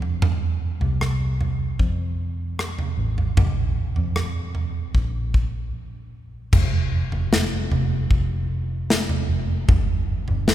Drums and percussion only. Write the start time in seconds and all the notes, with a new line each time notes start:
0.02 floor tom
0.22 floor tom
0.81 floor tom
1.01 cross-stick
1.41 floor tom
1.79 kick
2.59 cross-stick
2.79 floor tom
3.18 floor tom
3.37 kick, floor tom
3.96 floor tom
4.16 cross-stick
4.55 floor tom
4.95 kick
5.34 kick
6.53 kick, floor tom, crash
7.12 floor tom
7.33 snare
7.71 floor tom
8.11 kick
8.90 snare
9.09 floor tom
9.69 kick, floor tom
10.28 floor tom
10.48 snare